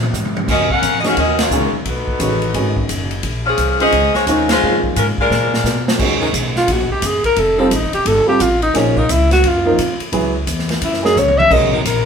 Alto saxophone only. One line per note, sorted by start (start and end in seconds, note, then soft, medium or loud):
6.57 6.73 F4 medium
6.72 6.91 F#4 medium
6.92 7.07 G4 medium
7.06 7.25 G#4 medium
7.25 7.41 A#4 loud
7.39 7.62 A4 medium
7.60 7.75 C4 medium
7.74 7.94 D#4 medium
7.94 8.09 G4 loud
8.07 8.28 A4 medium
8.29 8.43 G4 medium
8.41 8.62 F4 medium
8.63 8.78 D#4 medium
8.77 9.00 C#4 medium
8.98 9.13 D#4 medium
9.12 9.32 E4 medium
9.33 9.49 F#4 loud
9.47 10.02 F4 medium
10.84 11.03 E4 medium
11.05 11.20 G#4 medium
11.19 11.39 C#5 medium
11.38 11.54 E5 loud
11.52 11.73 D#5 medium
11.74 11.88 F#4 medium
11.87 12.05 A#4 medium